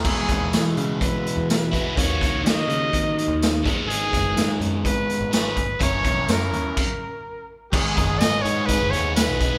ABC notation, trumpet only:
X:1
M:4/4
L:1/8
Q:1/4=125
K:G#m
V:1 name="Trumpet"
G3 z B2 B2 | c2 d4- d z | G3 z B2 B2 | c2 A4- A z |
G2 d c B c B2 |]